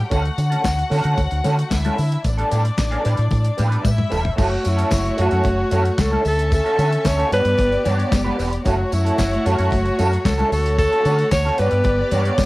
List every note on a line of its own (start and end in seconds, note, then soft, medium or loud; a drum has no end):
0.10 0.29 D2 loud
0.10 0.28 A3 medium
0.10 0.23 C#4 medium
0.10 1.68 F#4 medium
0.10 0.23 F#4 medium
0.10 0.22 A4 medium
0.10 1.68 F#5 medium
0.10 kick loud
0.10 closed hi-hat medium
0.10 tambourine medium
0.10 muted conga soft
0.23 muted clean electric guitar stroke soft
0.23 closed hi-hat soft
0.38 0.55 D3 medium
0.38 muted clean electric guitar stroke soft
0.38 closed hi-hat medium
0.38 tambourine medium
0.50 0.63 A3 medium
0.50 0.63 C#4 medium
0.50 0.64 F#4 medium
0.50 0.64 A4 medium
0.50 closed hi-hat medium
0.64 0.82 D2 loud
0.64 muted clean electric guitar stroke soft
0.64 kick loud
0.64 snare loud
0.64 clap medium
0.64 tambourine loud
0.64 high conga medium
0.77 muted clean electric guitar stroke soft
0.77 closed hi-hat soft
0.90 1.00 D3 medium
0.90 1.04 A3 medium
0.90 1.04 C#4 medium
0.90 1.04 F#4 medium
0.90 1.03 A4 medium
0.90 open hi-hat medium
0.90 tambourine soft
1.04 1.13 D3 medium
1.04 1.19 A3 medium
1.04 1.19 C#4 medium
1.04 1.19 F#4 medium
1.04 1.18 A4 medium
1.04 closed hi-hat soft
1.17 1.27 D2 loud
1.17 kick medium
1.17 closed hi-hat medium
1.17 tambourine soft
1.17 muted conga soft
1.31 1.40 D2 loud
1.31 muted clean electric guitar stroke soft
1.31 closed hi-hat soft
1.44 1.62 D3 medium
1.44 1.62 A3 medium
1.44 1.58 C#4 medium
1.44 1.58 F#4 medium
1.44 1.57 A4 medium
1.44 closed hi-hat medium
1.44 tambourine medium
1.44 muted conga medium
1.58 muted clean electric guitar stroke soft
1.58 closed hi-hat soft
1.71 1.89 D2 medium
1.71 2.24 E4 medium
1.71 2.24 E5 medium
1.71 muted clean electric guitar stroke soft
1.71 kick loud
1.71 snare loud
1.71 clap medium
1.71 tambourine medium
1.71 high conga medium
1.85 1.97 A3 medium
1.85 1.97 C#4 medium
1.85 1.98 F#4 medium
1.85 1.98 A4 medium
1.85 closed hi-hat soft
1.85 high conga medium
1.98 2.16 D3 medium
1.98 muted clean electric guitar stroke medium
1.98 open hi-hat medium
1.98 tambourine medium
2.12 muted clean electric guitar stroke soft
2.12 closed hi-hat medium
2.25 2.42 A1 loud
2.25 3.82 D4 medium
2.25 3.82 D5 medium
2.25 muted clean electric guitar stroke soft
2.25 kick medium
2.25 closed hi-hat medium
2.25 tambourine medium
2.25 muted conga soft
2.38 2.49 G3 medium
2.38 2.50 B3 medium
2.38 2.51 D4 medium
2.38 2.51 A4 medium
2.38 closed hi-hat soft
2.51 2.69 A2 medium
2.51 2.65 G3 medium
2.51 2.65 B3 medium
2.51 2.64 D4 medium
2.51 2.63 A4 medium
2.51 closed hi-hat medium
2.51 tambourine medium
2.64 muted clean electric guitar stroke soft
2.64 closed hi-hat soft
2.77 2.96 A1 loud
2.77 muted clean electric guitar stroke soft
2.77 kick medium
2.77 snare loud
2.77 clap medium
2.77 tambourine medium
2.77 high conga medium
2.91 3.03 G3 medium
2.91 3.04 B3 medium
2.91 3.04 D4 medium
2.91 3.06 A4 medium
2.91 closed hi-hat soft
3.04 3.14 A2 medium
3.04 3.19 G3 medium
3.04 3.17 B3 medium
3.04 3.16 D4 medium
3.04 3.17 B4 medium
3.04 closed hi-hat medium
3.04 tambourine soft
3.17 3.27 A2 loud
3.17 muted clean electric guitar stroke soft
3.17 closed hi-hat medium
3.31 3.49 A2 loud
3.31 muted clean electric guitar stroke soft
3.31 kick loud
3.31 closed hi-hat medium
3.31 tambourine soft
3.31 muted conga medium
3.31 low conga medium
3.44 muted clean electric guitar stroke soft
3.44 closed hi-hat soft
3.57 3.76 A2 loud
3.57 3.70 G3 medium
3.57 3.70 B3 loud
3.57 3.69 D4 medium
3.57 3.69 B4 medium
3.57 closed hi-hat medium
3.57 tambourine soft
3.57 muted conga medium
3.57 low conga medium
3.70 3.86 G3 medium
3.70 3.85 B3 medium
3.70 3.85 D4 medium
3.70 3.85 B4 medium
3.70 closed hi-hat soft
3.85 4.02 A2 medium
3.85 4.37 E4 medium
3.85 4.37 E5 medium
3.85 kick loud
3.85 high tom medium
3.85 tambourine medium
3.85 high conga medium
3.97 muted clean electric guitar stroke soft
3.97 mid tom medium
3.97 high conga medium
4.10 4.29 E1 medium
4.10 4.29 G3 medium
4.10 4.23 B3 medium
4.10 4.23 D4 medium
4.10 4.22 A4 medium
4.10 mid tom medium
4.10 tambourine medium
4.23 muted clean electric guitar stroke medium
4.23 floor tom loud
4.36 4.56 F#1 loud
4.36 4.55 A3 medium
4.36 6.22 A3 medium
4.36 4.50 C#4 medium
4.36 4.50 E4 medium
4.36 6.21 F#4 medium
4.36 4.49 A4 medium
4.36 6.21 C#5 medium
4.36 kick loud
4.36 crash loud
4.36 tambourine medium
4.36 muted conga soft
4.42 4.70 F#4 medium
4.50 muted clean electric guitar stroke soft
4.63 4.83 F#2 medium
4.63 muted clean electric guitar stroke soft
4.63 closed hi-hat medium
4.63 tambourine medium
4.68 5.20 E4 loud
4.76 4.89 A3 soft
4.76 4.90 C#4 medium
4.76 4.90 E4 medium
4.76 4.91 A4 medium
4.76 closed hi-hat medium
4.91 5.09 F#1 loud
4.91 muted clean electric guitar stroke soft
4.91 kick loud
4.91 snare medium
4.91 clap medium
4.91 tambourine loud
4.91 high conga medium
5.04 muted clean electric guitar stroke medium
5.04 closed hi-hat soft
5.17 5.28 F#2 medium
5.17 5.31 A3 medium
5.17 5.31 C#4 medium
5.17 5.30 E4 medium
5.17 5.29 A4 medium
5.17 closed hi-hat medium
5.21 6.02 F#4 loud
5.30 5.41 F#2 loud
5.30 5.46 A3 soft
5.30 5.46 C#4 medium
5.30 5.46 E4 medium
5.30 5.45 A4 medium
5.30 closed hi-hat soft
5.44 5.62 F#1 loud
5.44 kick loud
5.44 closed hi-hat medium
5.44 muted conga medium
5.58 muted clean electric guitar stroke soft
5.71 5.89 F#2 loud
5.71 5.89 A3 medium
5.71 5.85 C#4 medium
5.71 5.85 E4 medium
5.71 5.84 A4 loud
5.71 closed hi-hat medium
5.71 tambourine medium
5.71 muted conga medium
5.85 muted clean electric guitar stroke medium
5.85 closed hi-hat soft
5.98 6.16 C#2 medium
5.98 6.26 A4 medium
5.98 muted clean electric guitar stroke soft
5.98 kick loud
5.98 snare loud
5.98 clap medium
5.98 tambourine loud
5.98 high conga medium
6.11 6.24 A3 medium
6.11 6.24 C#4 medium
6.11 6.26 E4 medium
6.11 6.25 A4 medium
6.11 high conga medium
6.24 6.60 D2 loud
6.24 7.29 C#4 medium
6.24 7.29 A4 medium
6.24 6.51 A4 loud
6.24 7.29 E5 medium
6.24 muted clean electric guitar stroke soft
6.24 open hi-hat medium
6.24 tambourine medium
6.38 muted clean electric guitar stroke soft
6.38 closed hi-hat medium
6.52 7.08 A4 loud
6.52 muted clean electric guitar stroke soft
6.52 kick loud
6.52 closed hi-hat medium
6.52 tambourine medium
6.52 muted conga soft
6.65 6.77 A3 medium
6.65 6.77 C#4 medium
6.65 6.78 F#4 medium
6.65 6.78 A4 medium
6.65 closed hi-hat soft
6.78 6.96 D3 loud
6.78 6.92 A3 medium
6.78 6.91 C#4 medium
6.78 6.91 F#4 medium
6.78 6.90 A4 medium
6.78 closed hi-hat medium
6.78 tambourine medium
6.78 muted conga soft
6.91 muted clean electric guitar stroke soft
6.91 closed hi-hat medium
7.04 7.23 D2 loud
7.04 7.33 C#5 loud
7.04 muted clean electric guitar stroke soft
7.04 kick loud
7.04 snare loud
7.04 clap medium
7.04 tambourine loud
7.04 high conga medium
7.18 7.30 A3 medium
7.18 7.31 C#4 medium
7.18 7.31 F#4 medium
7.18 7.32 A4 medium
7.18 closed hi-hat soft
7.31 7.41 G2 medium
7.31 7.45 B3 medium
7.31 8.62 B3 medium
7.31 7.45 D4 medium
7.31 7.44 F#4 medium
7.31 8.62 G4 medium
7.31 8.09 B4 loud
7.31 7.44 C#5 medium
7.31 8.62 D5 loud
7.31 closed hi-hat medium
7.31 tambourine soft
7.44 7.54 G2 loud
7.44 muted clean electric guitar stroke soft
7.44 closed hi-hat medium
7.58 7.76 G1 medium
7.58 muted clean electric guitar stroke soft
7.58 kick loud
7.58 closed hi-hat medium
7.58 tambourine soft
7.58 muted conga soft
7.71 muted clean electric guitar stroke soft
7.71 closed hi-hat soft
7.84 8.03 G2 loud
7.84 7.98 B3 medium
7.84 7.98 D4 medium
7.84 7.97 F#4 loud
7.84 7.97 C#5 medium
7.84 closed hi-hat medium
7.84 tambourine soft
7.84 muted conga medium
7.84 low conga medium
7.98 8.10 B3 medium
7.98 8.11 D4 medium
7.98 8.11 F#4 medium
7.98 8.12 C#5 medium
7.98 closed hi-hat soft
8.11 8.29 F#1 medium
8.11 muted clean electric guitar stroke soft
8.11 kick loud
8.11 snare loud
8.11 clap medium
8.11 tambourine medium
8.11 high conga medium
8.24 8.36 B3 medium
8.24 8.37 D4 medium
8.24 8.38 F#4 medium
8.24 8.38 B4 medium
8.24 high conga medium
8.38 8.56 E1 medium
8.38 8.52 B3 medium
8.38 8.51 D4 medium
8.38 8.50 F#4 medium
8.38 8.50 B4 medium
8.38 open hi-hat medium
8.38 tambourine medium
8.51 muted clean electric guitar stroke medium
8.51 closed hi-hat medium
8.65 8.83 F#1 loud
8.65 8.83 F#3 medium
8.65 10.48 A3 medium
8.65 8.78 C#4 loud
8.65 8.77 E4 loud
8.65 10.48 F#4 medium
8.65 8.96 F#4 medium
8.65 8.76 A4 medium
8.65 10.48 C#5 medium
8.65 kick loud
8.65 closed hi-hat medium
8.65 tambourine medium
8.65 muted conga soft
8.77 muted clean electric guitar stroke soft
8.91 9.10 F#2 medium
8.91 9.48 E4 loud
8.91 muted clean electric guitar stroke soft
8.91 closed hi-hat medium
8.91 tambourine medium
8.91 muted conga soft
9.05 9.17 F#3 medium
9.05 9.18 C#4 medium
9.05 9.18 E4 medium
9.05 9.19 A4 medium
9.05 closed hi-hat medium
9.18 9.36 F#1 loud
9.18 muted clean electric guitar stroke soft
9.18 kick loud
9.18 snare loud
9.18 clap medium
9.18 tambourine loud
9.18 high conga medium
9.32 muted clean electric guitar stroke soft
9.32 closed hi-hat soft
9.45 9.54 F#2 loud
9.45 9.58 F#3 medium
9.45 9.58 C#4 medium
9.45 9.57 E4 loud
9.45 10.27 F#4 loud
9.45 9.56 A4 loud
9.45 closed hi-hat medium
9.45 tambourine soft
9.57 9.68 F#2 loud
9.57 9.73 F#3 medium
9.57 9.73 C#4 medium
9.57 9.72 E4 medium
9.57 9.72 A4 medium
9.57 closed hi-hat medium
9.71 9.89 F#1 loud
9.71 kick medium
9.71 closed hi-hat medium
9.71 tambourine soft
9.71 muted conga soft
9.85 muted clean electric guitar stroke medium
9.85 closed hi-hat soft
9.98 10.16 F#2 loud
9.98 10.16 F#3 medium
9.98 10.12 C#4 medium
9.98 10.11 E4 medium
9.98 10.11 A4 loud
9.98 closed hi-hat medium
9.98 tambourine medium
9.98 muted conga medium
10.12 muted clean electric guitar stroke medium
10.12 closed hi-hat soft
10.25 10.43 C#2 medium
10.25 10.52 A4 loud
10.25 muted clean electric guitar stroke soft
10.25 kick loud
10.25 snare loud
10.25 clap medium
10.25 tambourine medium
10.25 high conga medium
10.38 10.52 F#3 medium
10.38 10.51 C#4 medium
10.38 10.52 E4 medium
10.38 10.52 A4 medium
10.38 closed hi-hat soft
10.38 high conga medium
10.52 10.86 D2 loud
10.52 11.56 A3 medium
10.52 11.56 F#4 medium
10.52 10.77 A4 loud
10.52 11.56 C#5 loud
10.52 muted clean electric guitar stroke soft
10.52 open hi-hat medium
10.52 tambourine medium
10.66 muted clean electric guitar stroke soft
10.66 closed hi-hat medium
10.78 11.28 A4 loud
10.78 muted clean electric guitar stroke soft
10.78 kick loud
10.78 closed hi-hat medium
10.78 tambourine medium
10.78 muted conga soft
10.92 11.04 A3 medium
10.92 11.04 C#4 medium
10.92 11.05 F#4 medium
10.92 11.05 A4 medium
10.92 closed hi-hat soft
11.05 11.23 D3 loud
11.05 11.19 A3 medium
11.05 11.18 C#4 medium
11.05 11.18 F#4 medium
11.05 11.17 A4 medium
11.05 closed hi-hat medium
11.05 tambourine medium
11.18 muted clean electric guitar stroke soft
11.18 closed hi-hat medium
11.31 11.49 D2 loud
11.31 11.60 C#5 loud
11.31 muted clean electric guitar stroke soft
11.31 kick loud
11.31 snare loud
11.31 clap medium
11.31 tambourine loud
11.31 high conga medium
11.45 11.57 A3 medium
11.45 11.58 C#4 medium
11.45 11.58 F#4 medium
11.45 11.59 A4 medium
11.45 snare soft
11.58 11.68 G2 loud
11.58 11.72 G3 medium
11.58 12.46 B3 medium
11.58 11.72 D4 medium
11.58 11.71 F#4 medium
11.58 12.46 G4 medium
11.58 12.39 B4 loud
11.58 11.72 C#5 medium
11.58 12.46 D5 loud
11.58 closed hi-hat medium
11.58 tambourine soft
11.71 11.81 G2 loud
11.71 muted clean electric guitar stroke soft
11.71 closed hi-hat soft
11.84 12.02 G1 loud
11.84 muted clean electric guitar stroke soft
11.84 kick loud
11.84 closed hi-hat medium
11.84 muted conga medium
11.98 muted clean electric guitar stroke medium
12.11 12.29 G2 loud
12.11 12.26 G3 loud
12.11 12.26 D4 medium
12.11 12.25 F#4 medium
12.11 12.24 C#5 medium
12.11 closed hi-hat medium
12.11 tambourine medium
12.11 muted conga medium
12.11 low conga medium
12.25 12.40 G3 medium
12.25 12.40 D4 medium
12.25 12.39 F#4 medium
12.25 12.39 C#5 medium
12.25 closed hi-hat medium
12.38 12.46 F#1 medium
12.38 kick loud
12.38 snare loud
12.38 clap medium
12.38 tambourine medium
12.38 high conga medium